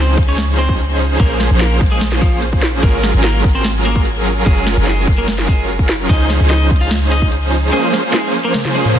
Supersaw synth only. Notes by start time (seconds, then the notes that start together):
Already playing: F3 C#4 D#4 G#4 C5
1.20 F3 A#3 C#4 C5
1.51 F3 A#3 C#4 G#4 C5
2.83 F#3 C#4 F4 G#4 A#4
3.14 F#3 C#4 F4 G#4 A#4
4.46 F#3 F4
4.77 F#3 C#4 F4 G#4 A#4
6.09 F3 C#4 D#4 G#4 C5
6.40 F3 C#4 D#4 G#4 C5
7.73 F3 A#3 C#4 G#4 C5
8.04 F3 A#3 C#4 G#4 C5
8.75 F3 A#3 C#4 G#4 C5